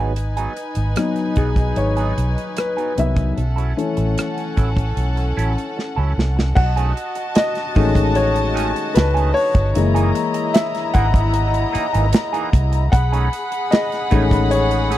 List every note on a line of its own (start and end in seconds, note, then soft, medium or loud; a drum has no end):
0.00 0.46 G#1 medium
0.00 0.12 F#3 medium
0.00 0.12 B3 medium
0.00 0.12 D#4 medium
0.00 3.34 D#4 medium
0.00 0.12 G#4 medium
0.00 3.33 B4 medium
0.00 3.34 G#5 medium
0.16 muted clean electric guitar stroke soft
0.16 closed hi-hat medium
0.37 0.53 F#3 medium
0.37 0.52 B3 soft
0.37 0.52 D#4 medium
0.37 0.52 G#4 medium
0.37 closed hi-hat soft
0.56 muted clean electric guitar stroke soft
0.56 closed hi-hat medium
0.75 0.94 G#1 medium
0.75 muted clean electric guitar stroke soft
0.75 closed hi-hat soft
0.96 2.13 F#3 soft
0.96 2.13 B3 soft
0.96 2.13 D#4 soft
0.96 muted clean electric guitar stroke soft
0.96 cross-stick loud
0.96 closed hi-hat medium
1.16 cross-stick soft
1.16 closed hi-hat soft
1.36 1.72 B1 medium
1.36 1.49 F#3 soft
1.36 1.49 B3 soft
1.36 1.49 D#4 soft
1.36 1.46 G#4 medium
1.36 1.49 G#4 soft
1.36 kick medium
1.36 closed hi-hat medium
1.56 muted clean electric guitar stroke soft
1.56 kick medium
1.56 closed hi-hat soft
1.76 2.12 G#1 medium
1.76 2.53 C#5 medium
1.76 muted clean electric guitar stroke soft
1.76 closed hi-hat medium
1.97 2.13 F#3 medium
1.97 2.13 B3 medium
1.97 2.12 D#4 medium
1.97 2.12 G#4 medium
1.97 closed hi-hat soft
2.16 2.35 B1 medium
2.16 muted clean electric guitar stroke soft
2.16 closed hi-hat medium
2.36 muted clean electric guitar stroke soft
2.36 closed hi-hat soft
2.56 2.95 B4 medium
2.56 muted clean electric guitar stroke soft
2.56 cross-stick medium
2.56 closed hi-hat medium
2.77 2.93 F#3 soft
2.77 2.93 B3 medium
2.77 2.92 D#4 medium
2.77 2.92 G#4 medium
2.77 closed hi-hat soft
2.97 3.32 C2 medium
2.97 3.34 D#3 soft
2.97 3.33 F#3 soft
2.97 3.33 B3 soft
2.97 3.74 E5 medium
2.97 muted clean electric guitar stroke soft
2.97 closed hi-hat medium
3.16 muted clean electric guitar stroke soft
3.16 kick medium
3.16 closed hi-hat soft
3.37 3.72 B1 medium
3.37 6.53 C#4 medium
3.37 6.54 A4 medium
3.37 6.53 F#5 medium
3.37 muted clean electric guitar stroke soft
3.37 closed hi-hat medium
3.56 3.73 F#3 medium
3.56 3.73 C#4 medium
3.56 3.72 E4 medium
3.56 3.72 A4 medium
3.56 closed hi-hat soft
3.77 4.30 E3 soft
3.77 4.31 A3 soft
3.77 4.31 C#4 medium
3.77 muted clean electric guitar stroke soft
3.77 closed hi-hat medium
3.97 4.15 A1 medium
3.97 muted clean electric guitar stroke soft
3.97 closed hi-hat soft
4.16 muted clean electric guitar stroke soft
4.16 cross-stick medium
4.16 closed hi-hat medium
4.38 cross-stick soft
4.38 closed hi-hat soft
4.57 4.92 A1 medium
4.57 4.69 F#3 soft
4.57 4.69 C#4 soft
4.57 4.69 E4 medium
4.57 4.69 A4 soft
4.57 kick medium
4.57 closed hi-hat medium
4.76 muted clean electric guitar stroke soft
4.76 kick medium
4.76 closed hi-hat soft
4.97 5.32 B1 medium
4.97 closed hi-hat medium
5.17 muted clean electric guitar stroke soft
5.17 closed hi-hat soft
5.37 5.55 A1 medium
5.37 5.52 F#3 medium
5.37 5.52 C#4 medium
5.37 5.53 E4 medium
5.37 5.53 A4 medium
5.37 closed hi-hat medium
5.58 closed hi-hat soft
5.77 muted clean electric guitar stroke soft
5.77 snare soft
5.96 6.15 C#2 medium
5.96 6.13 F#3 soft
5.96 6.12 C#4 medium
5.96 6.12 E4 medium
5.96 6.12 A4 medium
6.16 6.52 C2 medium
6.16 muted clean electric guitar stroke soft
6.16 snare medium
6.36 muted clean electric guitar stroke soft
6.36 snare medium
6.55 6.91 B1 medium
6.55 9.71 F#4 medium
6.55 9.71 D#5 medium
6.55 7.38 F#5 loud
6.55 9.71 A5 loud
6.55 muted clean electric guitar stroke soft
6.55 kick loud
6.55 crash medium
6.76 6.93 D#3 medium
6.76 6.92 A3 medium
6.76 6.92 C#4 medium
6.76 6.92 G#4 medium
6.76 closed hi-hat medium
6.96 muted clean electric guitar stroke soft
6.96 closed hi-hat medium
7.15 muted clean electric guitar stroke soft
7.15 closed hi-hat medium
7.35 8.18 D#5 loud
7.35 muted clean electric guitar stroke soft
7.35 snare loud
7.35 closed hi-hat medium
7.55 snare soft
7.55 closed hi-hat soft
7.75 8.72 A1 medium
7.75 7.88 D#3 medium
7.75 8.92 D#3 medium
7.75 8.92 G#3 soft
7.75 7.88 A3 medium
7.75 8.92 A3 soft
7.75 7.88 C#4 medium
7.75 8.92 C#4 medium
7.75 7.88 G#4 medium
7.75 kick medium
7.75 open hi-hat soft
7.95 muted clean electric guitar stroke soft
7.95 kick medium
7.95 closed hi-hat medium
8.15 8.98 C#5 medium
8.15 closed hi-hat medium
8.36 muted clean electric guitar stroke soft
8.36 closed hi-hat medium
8.55 8.71 D#3 medium
8.55 8.71 A3 medium
8.55 8.71 C#4 medium
8.55 8.71 G#4 medium
8.55 closed hi-hat medium
8.75 muted clean electric guitar stroke soft
8.75 closed hi-hat soft
8.95 9.31 C#2 loud
8.95 9.04 B4 medium
8.95 muted clean electric guitar stroke soft
8.95 snare loud
8.95 closed hi-hat medium
9.14 9.31 D#3 medium
9.14 9.31 A3 medium
9.14 9.31 C#4 medium
9.14 9.30 G#4 medium
9.14 closed hi-hat soft
9.34 10.57 C#5 loud
9.34 muted clean electric guitar stroke soft
9.34 open hi-hat medium
9.54 9.73 G1 medium
9.54 muted clean electric guitar stroke soft
9.54 kick loud
9.54 closed hi-hat medium
9.74 10.11 F#1 medium
9.74 12.89 E3 medium
9.74 12.89 G#3 soft
9.74 12.89 A#3 soft
9.74 12.89 E4 medium
9.74 12.89 D#5 medium
9.74 12.90 D#5 medium
9.74 12.89 A#5 loud
9.74 muted clean electric guitar stroke soft
9.74 closed hi-hat medium
9.94 10.11 E3 medium
9.94 10.11 A#3 medium
9.94 10.10 D#4 medium
9.94 10.10 G#4 medium
9.94 closed hi-hat medium
10.15 muted clean electric guitar stroke soft
10.15 closed hi-hat medium
10.34 muted clean electric guitar stroke soft
10.34 closed hi-hat medium
10.54 10.63 E5 medium
10.54 muted clean electric guitar stroke soft
10.54 snare loud
10.54 closed hi-hat medium
10.75 snare soft
10.75 closed hi-hat medium
10.94 11.64 G#1 medium
10.94 11.06 E3 medium
10.94 11.06 A#3 medium
10.94 11.07 D#4 medium
10.94 11.07 G#4 medium
10.94 12.49 F#5 loud
10.94 kick medium
10.94 closed hi-hat medium
11.14 muted clean electric guitar stroke soft
11.14 kick medium
11.14 closed hi-hat medium
11.33 muted clean electric guitar stroke soft
11.33 closed hi-hat medium
11.54 muted clean electric guitar stroke soft
11.54 closed hi-hat medium
11.73 11.85 E3 medium
11.73 11.85 A#3 medium
11.73 11.86 D#4 medium
11.73 11.86 G#4 medium
11.73 muted fingered electric bass stroke soft
11.73 closed hi-hat medium
11.93 12.12 G#1 medium
11.93 12.06 E3 soft
11.93 12.06 A#3 soft
11.93 12.05 D#4 medium
11.93 12.05 G#4 soft
11.93 closed hi-hat soft
12.13 muted clean electric guitar stroke soft
12.13 snare loud
12.13 closed hi-hat medium
12.33 12.49 E3 medium
12.33 12.49 A#3 medium
12.33 12.49 D#4 medium
12.33 12.48 G#4 medium
12.33 closed hi-hat medium
12.53 12.88 C2 loud
12.53 kick medium
12.53 closed hi-hat medium
12.72 muted clean electric guitar stroke soft
12.72 closed hi-hat medium
12.92 13.28 B1 loud
12.92 14.98 G#4 medium
12.92 14.98 F#5 medium
12.92 13.68 F#5 loud
12.92 14.98 B5 medium
12.92 muted clean electric guitar stroke soft
12.92 kick loud
12.92 closed hi-hat medium
13.12 13.28 A3 medium
13.12 13.28 C#4 medium
13.12 13.28 D#4 medium
13.12 13.28 G#4 medium
13.12 closed hi-hat medium
13.33 closed hi-hat medium
13.51 muted clean electric guitar stroke soft
13.51 closed hi-hat medium
13.71 14.53 D#5 loud
13.71 muted clean electric guitar stroke soft
13.71 snare loud
13.71 closed hi-hat medium
13.92 snare soft
13.92 closed hi-hat soft
14.11 14.98 A1 medium
14.11 14.98 D#3 medium
14.11 14.98 G#3 medium
14.11 14.23 A3 medium
14.11 14.98 A3 medium
14.11 14.24 C#4 medium
14.11 14.98 C#4 medium
14.11 14.24 D#4 medium
14.11 14.24 G#4 medium
14.11 kick medium
14.11 closed hi-hat medium
14.31 muted clean electric guitar stroke soft
14.31 kick medium
14.31 closed hi-hat medium
14.51 14.98 C#5 medium
14.51 closed hi-hat medium
14.70 muted clean electric guitar stroke soft
14.70 closed hi-hat medium
14.90 14.98 A3 medium
14.90 14.98 C#4 medium
14.90 14.98 D#4 medium
14.90 14.98 G#4 medium
14.90 closed hi-hat medium